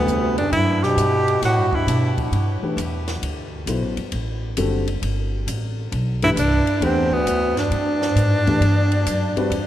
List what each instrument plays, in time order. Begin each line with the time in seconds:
Already playing: bass clarinet D2, upright piano C3 D3 G3 F#4 A4, tenor saxophone B3
0.07 upright bass E2, hi-hat pedal
0.38 bass clarinet F#2, tenor saxophone D4, ride
0.51 upright bass F#2, bass clarinet G2, tenor saxophone E4, ride
0.83 bass clarinet B2, tenor saxophone G4, snare
0.96 upright bass G2, hi-hat pedal, ride
1.28 ride
1.42 upright bass A2, bass clarinet A2, tenor saxophone F#4, snare, ride
1.57 upright bass G2
1.71 upright bass D2, bass clarinet G2, tenor saxophone E4, kick
1.87 upright bass B2, hi-hat pedal, ride
2.18 kick, ride
2.31 upright bass G2, ride
2.62 upright piano E3 A3 D4 G4 B4, muted upright bass stroke
2.77 upright bass E2, hi-hat pedal, ride
3.08 snare, ride
3.22 upright bass D2, ride
3.66 upright bass B1, upright piano F#3 B3 E4 A4 C5, hi-hat pedal, ride
3.81 upright bass A1
3.97 upright bass G1, ride
4.12 upright bass A1, ride
4.57 upright bass F#1, upright piano D3 G3 C4 F#4 A4, hi-hat pedal, ride
4.88 ride
5.02 upright bass G1, ride
5.47 upright bass A1, hi-hat pedal, ride
5.92 upright bass B1, ride
6.22 bass clarinet G2, upright piano E3 A3 D4 G4 B4, tenor saxophone E4, ride
6.36 upright bass C2, bass clarinet G2, tenor saxophone D4, hi-hat pedal, ride
6.67 ride
6.81 upright bass D2, bass clarinet E2, upright piano E3 A3 D4 G4 B4, tenor saxophone C4, ride
7.10 bass clarinet D2, tenor saxophone B3, muted upright bass stroke
7.26 upright bass E2, hi-hat pedal, ride
7.56 bass clarinet G2, tenor saxophone D4, snare, ride
7.70 upright bass G2, ride
8.02 snare
8.15 upright bass G#2, hi-hat pedal, ride
8.47 upright piano E3 A3 D4 G4 D5, kick, ride
8.60 upright bass G2, ride
8.92 ride
9.06 upright bass F#2, hi-hat pedal, ride
9.36 upright piano G3 C4 F#4 B4 D5, muted upright bass stroke, ride
9.50 upright bass E2, ride